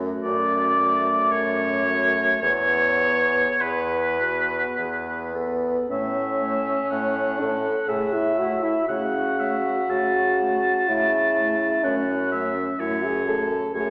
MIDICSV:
0, 0, Header, 1, 6, 480
1, 0, Start_track
1, 0, Key_signature, 3, "major"
1, 0, Tempo, 1090909
1, 1067, Time_signature, 3, 2, 24, 8
1, 1067, Tempo, 1181102
1, 2027, Tempo, 1115242
1, 2507, Tempo, 995025
1, 4907, Tempo, 955414
1, 6425, End_track
2, 0, Start_track
2, 0, Title_t, "Oboe"
2, 0, Program_c, 0, 68
2, 101, Note_on_c, 0, 74, 96
2, 577, Note_on_c, 0, 73, 98
2, 584, Note_off_c, 0, 74, 0
2, 1062, Note_off_c, 0, 73, 0
2, 1065, Note_on_c, 0, 73, 97
2, 1548, Note_on_c, 0, 71, 79
2, 1554, Note_off_c, 0, 73, 0
2, 2274, Note_off_c, 0, 71, 0
2, 2509, Note_on_c, 0, 76, 72
2, 2971, Note_off_c, 0, 76, 0
2, 2990, Note_on_c, 0, 78, 69
2, 3465, Note_on_c, 0, 76, 65
2, 3472, Note_off_c, 0, 78, 0
2, 3942, Note_off_c, 0, 76, 0
2, 3945, Note_on_c, 0, 78, 68
2, 4193, Note_on_c, 0, 76, 59
2, 4200, Note_off_c, 0, 78, 0
2, 4433, Note_on_c, 0, 81, 68
2, 4441, Note_off_c, 0, 76, 0
2, 5386, Note_off_c, 0, 81, 0
2, 5389, Note_on_c, 0, 78, 65
2, 5624, Note_off_c, 0, 78, 0
2, 5629, Note_on_c, 0, 76, 64
2, 5870, Note_on_c, 0, 73, 65
2, 5877, Note_off_c, 0, 76, 0
2, 6212, Note_off_c, 0, 73, 0
2, 6344, Note_on_c, 0, 73, 60
2, 6425, Note_off_c, 0, 73, 0
2, 6425, End_track
3, 0, Start_track
3, 0, Title_t, "Flute"
3, 0, Program_c, 1, 73
3, 109, Note_on_c, 1, 74, 83
3, 577, Note_on_c, 1, 73, 80
3, 584, Note_off_c, 1, 74, 0
3, 1064, Note_off_c, 1, 73, 0
3, 1066, Note_on_c, 1, 73, 87
3, 1539, Note_off_c, 1, 73, 0
3, 1555, Note_on_c, 1, 71, 54
3, 2263, Note_off_c, 1, 71, 0
3, 2511, Note_on_c, 1, 73, 57
3, 2565, Note_off_c, 1, 73, 0
3, 2743, Note_on_c, 1, 73, 50
3, 2798, Note_off_c, 1, 73, 0
3, 2993, Note_on_c, 1, 73, 52
3, 3046, Note_off_c, 1, 73, 0
3, 3233, Note_on_c, 1, 73, 48
3, 3285, Note_off_c, 1, 73, 0
3, 3469, Note_on_c, 1, 73, 54
3, 3523, Note_off_c, 1, 73, 0
3, 3709, Note_on_c, 1, 73, 48
3, 3763, Note_off_c, 1, 73, 0
3, 3948, Note_on_c, 1, 73, 52
3, 4003, Note_off_c, 1, 73, 0
3, 4196, Note_on_c, 1, 73, 54
3, 4250, Note_off_c, 1, 73, 0
3, 4432, Note_on_c, 1, 73, 52
3, 4486, Note_off_c, 1, 73, 0
3, 4664, Note_on_c, 1, 73, 45
3, 4718, Note_off_c, 1, 73, 0
3, 4908, Note_on_c, 1, 73, 45
3, 4962, Note_off_c, 1, 73, 0
3, 5148, Note_on_c, 1, 73, 52
3, 5202, Note_off_c, 1, 73, 0
3, 5392, Note_on_c, 1, 73, 57
3, 5446, Note_off_c, 1, 73, 0
3, 5627, Note_on_c, 1, 73, 50
3, 5681, Note_off_c, 1, 73, 0
3, 5873, Note_on_c, 1, 73, 46
3, 5927, Note_off_c, 1, 73, 0
3, 6107, Note_on_c, 1, 73, 46
3, 6161, Note_off_c, 1, 73, 0
3, 6349, Note_on_c, 1, 73, 47
3, 6402, Note_off_c, 1, 73, 0
3, 6425, End_track
4, 0, Start_track
4, 0, Title_t, "French horn"
4, 0, Program_c, 2, 60
4, 0, Note_on_c, 2, 57, 59
4, 332, Note_off_c, 2, 57, 0
4, 344, Note_on_c, 2, 57, 67
4, 809, Note_off_c, 2, 57, 0
4, 820, Note_on_c, 2, 57, 60
4, 1063, Note_off_c, 2, 57, 0
4, 1067, Note_on_c, 2, 59, 53
4, 1302, Note_off_c, 2, 59, 0
4, 1309, Note_on_c, 2, 59, 55
4, 1781, Note_off_c, 2, 59, 0
4, 1789, Note_on_c, 2, 59, 60
4, 2264, Note_off_c, 2, 59, 0
4, 2272, Note_on_c, 2, 59, 60
4, 2500, Note_off_c, 2, 59, 0
4, 2506, Note_on_c, 2, 61, 89
4, 3231, Note_on_c, 2, 69, 87
4, 3238, Note_off_c, 2, 61, 0
4, 3467, Note_on_c, 2, 68, 77
4, 3474, Note_off_c, 2, 69, 0
4, 3585, Note_on_c, 2, 64, 79
4, 3592, Note_off_c, 2, 68, 0
4, 3706, Note_on_c, 2, 66, 75
4, 3713, Note_off_c, 2, 64, 0
4, 3828, Note_on_c, 2, 64, 77
4, 3835, Note_off_c, 2, 66, 0
4, 3946, Note_off_c, 2, 64, 0
4, 3949, Note_on_c, 2, 66, 89
4, 4909, Note_on_c, 2, 64, 79
4, 4917, Note_off_c, 2, 66, 0
4, 5390, Note_on_c, 2, 61, 76
4, 5398, Note_off_c, 2, 64, 0
4, 5733, Note_off_c, 2, 61, 0
4, 5870, Note_on_c, 2, 64, 73
4, 5997, Note_on_c, 2, 68, 86
4, 6005, Note_off_c, 2, 64, 0
4, 6116, Note_on_c, 2, 69, 87
4, 6123, Note_off_c, 2, 68, 0
4, 6349, Note_off_c, 2, 69, 0
4, 6352, Note_on_c, 2, 68, 89
4, 6425, Note_off_c, 2, 68, 0
4, 6425, End_track
5, 0, Start_track
5, 0, Title_t, "Clarinet"
5, 0, Program_c, 3, 71
5, 0, Note_on_c, 3, 66, 69
5, 332, Note_off_c, 3, 66, 0
5, 337, Note_on_c, 3, 66, 64
5, 805, Note_off_c, 3, 66, 0
5, 819, Note_on_c, 3, 66, 55
5, 1063, Note_off_c, 3, 66, 0
5, 1068, Note_on_c, 3, 68, 53
5, 1303, Note_off_c, 3, 68, 0
5, 1311, Note_on_c, 3, 68, 57
5, 1499, Note_off_c, 3, 68, 0
5, 1549, Note_on_c, 3, 68, 73
5, 1773, Note_off_c, 3, 68, 0
5, 1791, Note_on_c, 3, 66, 70
5, 2025, Note_on_c, 3, 68, 72
5, 2032, Note_off_c, 3, 66, 0
5, 2270, Note_on_c, 3, 69, 69
5, 2276, Note_off_c, 3, 68, 0
5, 2504, Note_off_c, 3, 69, 0
5, 2507, Note_on_c, 3, 57, 47
5, 2584, Note_off_c, 3, 57, 0
5, 2753, Note_on_c, 3, 57, 54
5, 2830, Note_off_c, 3, 57, 0
5, 2993, Note_on_c, 3, 57, 52
5, 3070, Note_off_c, 3, 57, 0
5, 3231, Note_on_c, 3, 57, 46
5, 3308, Note_off_c, 3, 57, 0
5, 3466, Note_on_c, 3, 57, 49
5, 3544, Note_off_c, 3, 57, 0
5, 3704, Note_on_c, 3, 57, 47
5, 3781, Note_off_c, 3, 57, 0
5, 3954, Note_on_c, 3, 57, 50
5, 4031, Note_off_c, 3, 57, 0
5, 4194, Note_on_c, 3, 57, 50
5, 4271, Note_off_c, 3, 57, 0
5, 4436, Note_on_c, 3, 57, 51
5, 4513, Note_off_c, 3, 57, 0
5, 4682, Note_on_c, 3, 57, 53
5, 4759, Note_off_c, 3, 57, 0
5, 4915, Note_on_c, 3, 57, 53
5, 4995, Note_off_c, 3, 57, 0
5, 5163, Note_on_c, 3, 57, 51
5, 5244, Note_off_c, 3, 57, 0
5, 5397, Note_on_c, 3, 57, 54
5, 5477, Note_off_c, 3, 57, 0
5, 5636, Note_on_c, 3, 57, 46
5, 5716, Note_off_c, 3, 57, 0
5, 5871, Note_on_c, 3, 57, 55
5, 5952, Note_off_c, 3, 57, 0
5, 6119, Note_on_c, 3, 57, 50
5, 6199, Note_off_c, 3, 57, 0
5, 6353, Note_on_c, 3, 57, 56
5, 6425, Note_off_c, 3, 57, 0
5, 6425, End_track
6, 0, Start_track
6, 0, Title_t, "Bassoon"
6, 0, Program_c, 4, 70
6, 0, Note_on_c, 4, 42, 95
6, 50, Note_off_c, 4, 42, 0
6, 108, Note_on_c, 4, 42, 85
6, 524, Note_off_c, 4, 42, 0
6, 578, Note_on_c, 4, 42, 84
6, 1007, Note_off_c, 4, 42, 0
6, 1068, Note_on_c, 4, 40, 78
6, 1493, Note_off_c, 4, 40, 0
6, 1547, Note_on_c, 4, 40, 80
6, 1970, Note_off_c, 4, 40, 0
6, 2024, Note_on_c, 4, 40, 66
6, 2453, Note_off_c, 4, 40, 0
6, 2510, Note_on_c, 4, 45, 67
6, 2934, Note_off_c, 4, 45, 0
6, 2995, Note_on_c, 4, 45, 68
6, 3410, Note_off_c, 4, 45, 0
6, 3462, Note_on_c, 4, 45, 62
6, 3890, Note_off_c, 4, 45, 0
6, 3949, Note_on_c, 4, 49, 73
6, 4376, Note_off_c, 4, 49, 0
6, 4433, Note_on_c, 4, 49, 66
6, 4851, Note_off_c, 4, 49, 0
6, 4911, Note_on_c, 4, 49, 67
6, 5337, Note_off_c, 4, 49, 0
6, 5393, Note_on_c, 4, 42, 69
6, 5815, Note_off_c, 4, 42, 0
6, 5873, Note_on_c, 4, 42, 73
6, 6293, Note_off_c, 4, 42, 0
6, 6351, Note_on_c, 4, 42, 72
6, 6425, Note_off_c, 4, 42, 0
6, 6425, End_track
0, 0, End_of_file